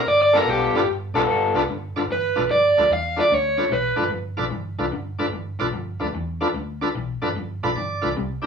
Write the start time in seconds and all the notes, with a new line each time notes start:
0.06 G1 D5
0.22 D5
0.33 G3 B3 D4 F4 A4 A#4 B4
0.45 B1 G3 B3 F4 A4
0.50 G4
0.73 G1 D4 F4 A4
0.77 B4
0.86 G1
1.14 B1 G3 B3 D4 F4 A4 B4
1.27 G1 G3 B3 F4 A4
1.54 C2 D4 F4 A4 B4
1.67 G1 G2 D3
1.95 G1 G2 D3 D4 F4 A4 B4
2.08 G1 G2 E3 B4
2.36 B1 G2 E3 D4 F4 A4 B4
2.48 G1 G2 F3 D5
2.77 D2 G2 F3 D4 F4 A4 B4
2.90 E2 G2 E3 F5
3.16 G2 E3 D4 F4 A4 B4
3.20 D5
3.30 D2 G2 D3 C#5
3.57 G2 D3 D4 F4 A4 B4
3.70 B1 G2 E3 B4
3.96 G1 G2 E3 D4 F4 A4 B4
4.09 G1 G2 F3
4.37 B1 G2 F3 D4 F4 A4 B4
4.51 G1 G2 E3
4.78 C2 G2 E3 D4 F4 A4 B4
4.91 G1 G2 D3
5.19 G1 G2 D3 D4 F4 A4 B4
5.32 G1 G2 E3
5.59 B1 G2 E3 D4 F4 A4 B4
5.72 G1 G2 F3
6.00 D2 G2 F3 D4 F4 A4 B4
6.14 E2 G2 E3
6.41 G2 E3 D4 F4 A4 B4
6.54 D2 G2 D3
6.81 G2 D3 D4 F4 A4 B4
6.94 B1 G2 E3
7.22 G1 G2 E3 D4 F4 A4 B4
7.35 G1 G2 F3
7.62 B1 G2 F3 D4 F4 A4 B4 B5
7.75 G1 G2 E3 D5
8.01 C2 G2 E3 D4 F4 A4 B4
8.17 C2 C3 G3
8.42 D4 E4 G4